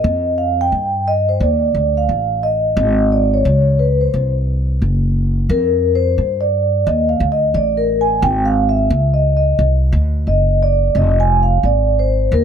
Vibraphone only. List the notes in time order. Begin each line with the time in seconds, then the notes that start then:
Already playing: D#5
0.38 F5
0.61 G5
1.08 D#5
1.29 C5
1.41 D5
1.97 F5
2.43 D#5
3.12 D5
3.34 C#5
3.79 B4
4.01 C5
5.50 A#4
5.96 C5
6.41 D5
6.87 D#5
7.09 F5
7.32 D#5
7.55 D5
7.77 A#4
8.01 G#5
8.23 G5
8.45 F5
8.69 E5
9.14 D#5
9.37 D#5
10.28 D#5
10.63 D5
10.97 D#5
11.20 G#5
11.43 F5
11.65 D5
11.99 C5
12.33 A#4